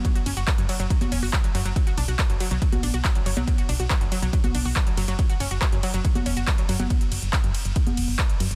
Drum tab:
RD |x-x-x-x-x-x-x-x-|x-x-x-x-x-x-x-x-|x-x-x-x-x-x-x-x-|x-x-x-x-x-x-x-x-|
HH |xxoxxxoxxxoo-xox|xxoxxxoxxxoxxxox|xxoxxxoxxxooxxox|xxoxxxoxxxoxxxox|
CP |----x-------x---|----x-------x---|----x-------x---|----x-------x---|
CG |---------o------|---------o-----o|---------o------|---------o-----o|
BD |o---o---o---o---|o---o---o---o---|o---o---o---o---|o---o---o---o---|

RD |x-x-x-x-x-x-x-x-|
HH |xxoxxxoxxxoo-xox|
CP |----x-------x---|
CG |---------o------|
BD |o---o---o---o---|